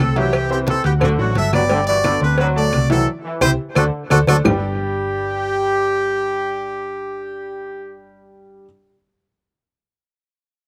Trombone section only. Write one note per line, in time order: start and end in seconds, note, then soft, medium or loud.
0.15 0.33 F#3 medium
0.49 0.78 E3 medium
1.00 1.29 D3 medium
1.53 1.62 F#3 medium
1.71 1.80 D3 medium
1.88 1.97 E3 medium
2.05 2.23 D3 medium
2.39 2.67 F#3 medium
2.90 3.08 F#3 medium
3.24 3.53 E3 medium
3.75 4.03 D3 medium
4.28 4.37 F#3 medium
4.44 4.56 G3 medium